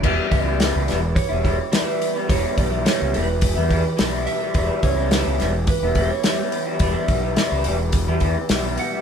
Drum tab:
CC |x-------|--------|--------|--------|
HH |-ooooooo|oooooooo|oooooooo|oooooooo|
SD |--oo--o-|--o---o-|--oo--o-|--o---o-|
BD |oo--oo--|oo--oo--|oo--oo--|oo--oo--|